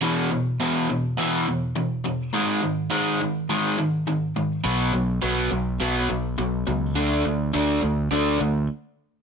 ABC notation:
X:1
M:4/4
L:1/8
Q:1/4=104
K:Bphr
V:1 name="Overdriven electric guitar" clef=bass
[E,,B,,E,] [E,,B,,] [E,,B,,E,] [E,,B,,] [E,,B,,E,] [E,,B,,] [E,,B,,] [E,,B,,] | [^G,,^D,^G,] [G,,D,] [G,,D,G,] [G,,D,] [G,,D,G,] [G,,D,] [G,,D,] [G,,D,] | [B,,F,B,] [B,,F,] [B,,F,B,] [B,,F,] [B,,F,B,] [B,,F,] [B,,F,] [B,,F,] | [D,A,D] [D,A,] [D,A,D] [D,A,] [D,A,D] [D,A,] z2 |]
V:2 name="Fingered electric bass" clef=bass
z8 | z8 | B,,, B,,, B,,, B,,, B,,, B,,, B,,, ^C,, | D,, D,, D,, D,, D,, D,, z2 |]